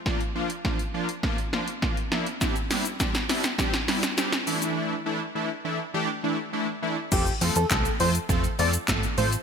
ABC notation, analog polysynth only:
X:1
M:4/4
L:1/8
Q:1/4=102
K:F
V:1 name="Analog polysynth"
[F,B,DF] [F,B,DF] [F,B,DF] [F,B,DF] [F,B,DF] [F,B,DF] [F,B,DF] [F,B,DE] | [G,CDE] [G,CDE] [G,CDG] [G,CDE] [G,CDG] [G,CDE] [G,CDG] [E,A,DE]- | [E,A,DE] [E,A,DE] [E,A,DE] [E,A,DE] [E,A,DG] [E,A,DE] [E,A,DE] [E,A,DE] | [F,A,CFA] [F,A,CFA] [F,A,CFA] [F,A,CFc] [F,A,CFA] [F,A,CFA] [F,A,CFA] [F,A,CFA] |]